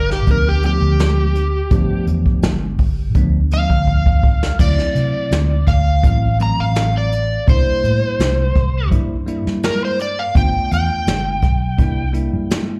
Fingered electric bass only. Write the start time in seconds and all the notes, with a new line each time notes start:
Already playing: G1
0.27 D2
0.81 D2
1.71 G1
2.07 E2
2.42 G1
2.79 G1
3.15 D2
3.70 D2
4.59 D2
4.95 C3
5.31 D2
5.67 D2
6.03 A1
6.59 A1
7.48 C2
7.84 A2
8.19 C2
8.56 C2
8.92 G2
9.47 G2
10.35 G1
10.72 E2
11.07 G1
11.43 B1
11.79 C2
12.33 G2